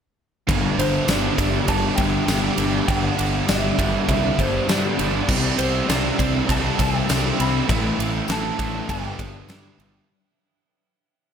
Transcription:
0.46 fingered electric bass G1, overdriven electric guitar G2 D3 G3, ambient pad B3 G4 D5 E5, kick, ride
0.50 overdriven electric guitar B3 D4
0.78 fingered electric bass G1, overdriven electric guitar B3 D4, clean electric guitar C5, ride
0.82 distorted electric guitar D3, overdriven electric guitar G3
1.07 fingered electric bass G1, distorted electric guitar G2, overdriven electric guitar D3 G3 B3, clean electric guitar D5, snare, ride, tambourine
1.11 overdriven electric guitar D4
1.36 fingered electric bass G1, overdriven electric guitar G2 D3 G3 B3 D4, kick, ride
1.42 distorted electric guitar D3
1.66 fingered electric bass G1, overdriven electric guitar G2 D3 G3 B3 D4, clean electric guitar A5, kick, ride
1.72 distorted electric guitar G3
1.96 fingered electric bass G1, overdriven electric guitar B3 D4, clean electric guitar G5, kick, ride
2.00 distorted electric guitar D3, overdriven electric guitar G3
2.26 fingered electric bass G1, distorted electric guitar G2, overdriven electric guitar D3 G3 B3 D4, snare, ride, tambourine
2.32 distorted electric guitar G3
2.56 fingered electric bass G1, overdriven electric guitar G2 D3 G3 B3 D4, ride
2.62 distorted electric guitar D3
2.86 fingered electric bass G1, overdriven electric guitar G2 D3 G3 B3 D4, ambient pad F#5, clean electric guitar G5, kick, ride
2.99 clean electric guitar F#5
3.16 fingered electric bass G1, overdriven electric guitar G3 B3 D4, ride
3.21 distorted electric guitar D3
3.46 fingered electric bass G1, distorted electric guitar G2, overdriven electric guitar D3 G3 B3 D4, clean electric guitar E5, snare, ride, tambourine
3.50 distorted electric guitar D3 G3
3.75 fingered electric bass G1, overdriven electric guitar G2 G3 B3 D4, kick, ride
3.82 distorted electric guitar D3
4.06 fingered electric bass C2, overdriven electric guitar G2 D3 G3 B3 D4, clean electric guitar E5, kick, ride
4.36 fingered electric bass G1, overdriven electric guitar G3 B3 D4, clean electric guitar C5, kick, ride
4.42 distorted electric guitar D3
4.67 fingered electric bass G2, distorted electric guitar G2, overdriven electric guitar D3 G3 B3 D4, clean electric guitar D5, snare, ride, tambourine
4.97 fingered electric bass G1, overdriven electric guitar G2 G3 B3 D4, ride
5.01 distorted electric guitar D3
5.27 fingered electric bass C2, overdriven electric guitar C3 G3 C4 E4, ambient pad C4 A4 E5, kick, crash
5.57 fingered electric bass C2, overdriven electric guitar G3 C4 E4, clean electric guitar C5, ride
5.87 fingered electric bass C2, overdriven electric guitar C3 G3 C4 E4, clean electric guitar D5, snare, ride, tambourine
6.18 fingered electric bass C2, overdriven electric guitar C3 G3 C4 E4, kick, ride
6.47 fingered electric bass C2, overdriven electric guitar C3 G3 C4 E4, kick, ride
6.51 clean electric guitar A5
6.78 fingered electric bass C2, overdriven electric guitar G3 C4 E4, clean electric guitar G5, kick, ride
7.08 fingered electric bass C2, overdriven electric guitar C3 G3 C4, snare, ride, tambourine
7.12 overdriven electric guitar E4
7.38 fingered electric bass C2, overdriven electric guitar C3 C4 E4, clean electric guitar B5, ride
7.42 overdriven electric guitar G3
7.68 fingered electric bass A1, overdriven electric guitar A2 E3 A3 C4 E4, ambient pad B4 G5, kick, ride
7.98 fingered electric bass A1, distorted electric guitar E3, overdriven electric guitar A3 C4 E4, ride
8.28 fingered electric bass A1, distorted electric guitar A2, overdriven electric guitar E3 A3 C4 E4, clean electric guitar A5, snare, ride, tambourine
8.58 fingered electric bass A1, overdriven electric guitar A2 A3 C4 E4, kick, ride
8.62 distorted electric guitar E3
8.87 fingered electric bass G1, overdriven electric guitar G2 D3 G3 B3 D4, ambient pad D4 E5, clean electric guitar G5, kick, ride
9.17 fingered electric bass G1, overdriven electric guitar G3 B3 D4, kick, ride
9.22 distorted electric guitar D3
9.47 fingered electric bass G2, distorted electric guitar G2, overdriven electric guitar D3 G3 B3 D4, snare, ride, tambourine
9.77 fingered electric bass G1, overdriven electric guitar G2 G3 B3 D4, ride
9.82 distorted electric guitar D3

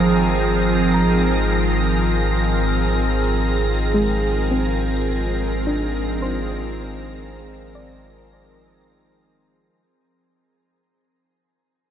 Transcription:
Already playing: analog synth bass G#1, harmonium D#3 G#3, ambient pad F3 C4 G#4 A#4, synth pluck D5, violin section A#6
0.94 synth pluck A#5
3.94 synth pluck G#3
4.51 synth pluck C4
5.67 synth pluck D4
6.22 synth pluck C5
7.75 synth pluck D5

